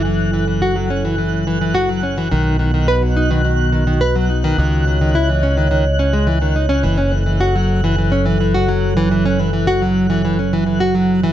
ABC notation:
X:1
M:4/4
L:1/16
Q:1/4=106
K:F#dor
V:1 name="Synth texture"
f'16- | f'16- | f'16- | f'16- |
f'16 |]
V:2 name="Ambient pad"
[F,EA]16 | [B,Fd]16 | [cd]16 | [F,A]16- |
[F,A]16 |]
V:3 name="Nylon-string guitar" clef=bass
E,2 E, E, F F, C E, E,2 E, E, F F, C E, | D,2 D, D, B F, D D, D,2 D, D, B F, D D, | D,2 D, D, E E, C D, D, z C G, E, D, D C | E, C E, E, F F,2 E, E, C E, E, F F,2 E, |
E, C E, E, F F,2 E, E, C E, E, F F,2 E, |]
V:4 name="Fingered electric bass" clef=bass
F,,,16 | B,,,16 | C,,16 | F,,,16- |
F,,,16 |]